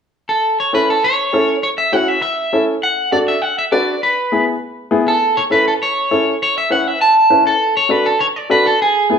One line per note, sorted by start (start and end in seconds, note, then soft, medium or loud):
0.29 0.57 A4 medium
0.60 0.74 C#5 medium
0.73 0.94 C#4 medium
0.73 0.94 E4 medium
0.73 0.95 A4 medium
0.73 0.88 B4 medium
0.90 1.05 A4 medium
1.04 1.60 C#5 loud
1.33 1.54 C#4 medium
1.33 1.54 E4 medium
1.33 1.55 A4 medium
1.63 1.68 C#5 loud
1.78 1.93 E5 medium
1.92 2.14 C#4 medium
1.92 2.14 E4 medium
1.92 2.14 F#4 medium
1.92 2.08 F#5 medium
2.08 2.21 E5 medium
2.22 2.64 E5 loud
2.53 2.74 C#4 medium
2.53 2.74 E4 medium
2.53 2.74 A4 medium
2.83 3.11 F#5 loud
3.12 3.33 D4 medium
3.12 3.33 F#4 medium
3.12 3.34 A4 medium
3.12 3.18 D5 medium
3.28 3.42 E5 medium
3.42 3.57 F#5 medium
3.59 3.64 E5 medium
3.72 3.93 D4 medium
3.72 3.93 F#4 medium
3.72 3.93 B4 medium
3.72 4.00 D5 medium
4.03 4.44 B4 medium
4.32 4.53 B3 medium
4.32 4.53 E4 medium
4.32 4.53 G#4 medium
4.91 5.12 B3 medium
4.91 5.12 E4 medium
4.91 5.13 G#4 medium
5.08 5.38 A4 medium
5.37 5.42 C#5 medium
5.50 5.72 C#4 medium
5.50 5.72 E4 medium
5.50 5.72 A4 medium
5.50 5.66 B4 medium
5.68 5.73 A4 medium
5.83 6.38 C#5 loud
6.11 6.32 C#4 medium
6.11 6.32 E4 medium
6.11 6.32 A4 medium
6.43 6.57 C#5 medium
6.58 6.72 E5 medium
6.70 6.92 C#4 medium
6.70 6.92 E4 medium
6.70 6.92 B4 medium
6.70 6.88 F#5 medium
6.88 7.01 E5 medium
7.01 7.43 A5 loud
7.30 7.51 C#4 medium
7.30 7.51 E4 medium
7.30 7.51 B4 medium
7.47 7.74 A4 medium
7.77 7.91 C#5 medium
7.89 8.11 D4 medium
7.89 8.11 F#4 medium
7.89 8.11 A4 medium
7.89 8.06 B4 medium
8.06 8.20 A4 medium
8.21 8.26 C#5 medium
8.36 8.51 D5 medium
8.50 8.71 D4 medium
8.50 8.71 F#4 medium
8.50 8.71 A4 medium
8.50 8.66 B4 medium
8.67 8.80 A4 medium
8.82 9.19 G#4 medium
9.10 9.19 B3 medium
9.10 9.19 E4 medium
9.10 9.19 G#4 medium